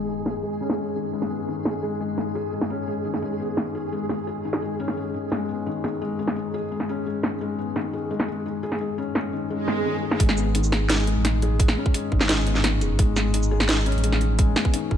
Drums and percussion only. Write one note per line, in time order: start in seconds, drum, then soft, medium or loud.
0.26 snare medium
0.70 snare medium
1.22 snare soft
1.65 snare medium
2.18 snare medium
2.61 snare medium
3.14 snare soft
3.57 snare medium
4.09 snare soft
4.53 snare medium
4.88 snare soft
5.32 snare medium
5.84 snare soft
6.27 snare medium
6.80 snare soft
7.23 snare medium
7.76 snare medium
8.20 snare medium
8.72 snare medium
9.15 snare medium
9.68 snare medium
10.11 snare medium
10.20 kick loud
10.20 closed hi-hat medium
10.29 snare medium
10.37 shaker soft
10.55 closed hi-hat medium
10.64 shaker soft
10.72 snare medium
10.90 snare loud
10.90 closed hi-hat medium
11.07 closed hi-hat soft
11.25 snare medium
11.25 closed hi-hat medium
11.42 closed hi-hat soft
11.60 kick loud
11.60 closed hi-hat medium
11.68 snare medium
11.86 kick loud
11.94 closed hi-hat medium
12.12 kick medium
12.21 snare soft
12.21 snare medium
12.29 snare loud
12.29 closed hi-hat medium
12.47 closed hi-hat soft
12.55 snare soft
12.64 snare medium
12.64 closed hi-hat medium
12.81 closed hi-hat soft
12.99 kick loud
12.99 closed hi-hat medium
13.16 snare medium
13.16 shaker soft
13.34 closed hi-hat medium
13.43 shaker soft
13.60 snare medium
13.69 snare loud
13.69 closed hi-hat medium
13.86 closed hi-hat soft
13.92 closed hi-hat soft
13.98 closed hi-hat soft
14.04 closed hi-hat medium
14.12 snare medium
14.21 closed hi-hat soft
14.39 kick loud
14.39 closed hi-hat medium
14.56 snare medium
14.65 kick loud
14.74 closed hi-hat medium
14.91 kick medium